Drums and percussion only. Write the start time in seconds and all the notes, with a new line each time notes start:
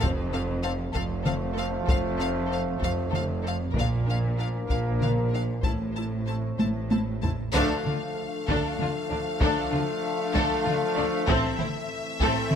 0.03 taiko
0.95 taiko
1.26 taiko mid
1.88 taiko
2.81 taiko
3.13 taiko mid
3.75 taiko
4.70 taiko
5.01 taiko mid
5.63 taiko
6.59 taiko high
6.91 taiko high
7.23 taiko low
7.55 taiko
7.86 taiko mid
8.48 taiko
8.79 taiko mid
9.41 taiko
9.73 taiko mid
10.35 taiko
10.67 taiko mid
11.29 taiko
11.59 taiko mid
12.20 taiko
12.51 taiko mid